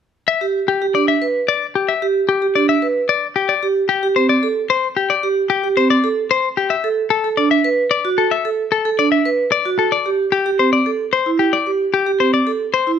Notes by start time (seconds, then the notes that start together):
0.28 E5
0.41 G4
0.68 G4
0.82 G4
0.95 D4 D5
1.08 E5
1.22 B4
1.48 D5
1.75 G4
1.89 E5
2.02 G4
2.29 G4
2.42 G4
2.55 D4 D5
2.69 E5
2.82 B4
3.09 D5
3.36 G4
3.49 D5
3.63 G4
3.89 G4
4.03 G4
4.16 C4 C5
4.29 D5
4.43 A4
4.70 C5
4.96 G4
5.10 D5
5.23 G4
5.50 G4
5.64 G4
5.77 C4 C5
5.90 D5
6.04 A4
6.31 C5
6.57 G4
6.70 E5
6.84 A4
7.10 A4
7.24 A4
7.37 D4 D5
7.51 E5
7.64 B4
7.91 D5
8.05 F#4
8.18 A4
8.31 E5
8.45 A4
8.72 A4
8.85 A4
8.99 D4 D5
9.12 E5
9.25 B4
9.52 D5
9.66 F#4
9.79 A4
9.92 D5
10.06 G4
10.32 G4
10.46 G4
10.59 C4 C5
10.73 D5
10.86 A4
11.13 C5
11.26 E4
11.39 G4
11.53 D5
11.66 G4
11.94 G4
12.07 G4
12.20 C4 C5
12.34 D5
12.47 A4
12.74 C5
12.87 E4